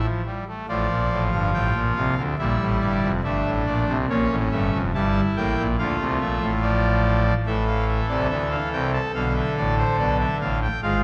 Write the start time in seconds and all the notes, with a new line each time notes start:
0.03 F3
0.25 G3
0.48 A3
0.69 A1 A2 F3 F4 D5
0.90 A#1 A#2
1.11 A1 A2
1.32 G1 G2 F5
1.53 A1 A2 G5
1.74 A#1 A#2
1.96 C2 C3 F5
2.17 D2 D3
2.39 A#1 A#2 G3 E4 E5
2.60 A1 A2
2.82 G1 G2 D5
3.03 F1 F2
3.24 G1 G2 A3 D4 E5
3.45 A1 A2
3.66 A#1 A#2 D5
3.87 C2 C3
4.09 A#1 A#2 A#3 C#4 C#5
4.30 A1 A2
4.51 G1 G2 A3 E5
4.72 F1 F2
4.94 G1 G2 G3 E4 A5
5.36 A1 A2 A#3 G5
5.57 A#1 A#2
5.78 D2 D3 A3 F4 F5
6.00 C2 C3
6.21 A#1 A#2 E5
6.41 A1 A2
6.62 F3 D5
7.46 A1 A2 E3 A4 E5
7.67 F5
7.88 E5
8.09 C2 C3 D5
8.30 D2 D3 E5
8.51 F5
8.72 C2 C3 G5
8.93 A5
9.15 B1 B2 D3 F5
9.36 E5
9.57 A1 A2 D5
9.78 C5
9.99 B1 B2 D5
10.20 E5
10.41 A1 A2 F5
10.61 G5
10.82 G#1 G#2 G#3 F4 F5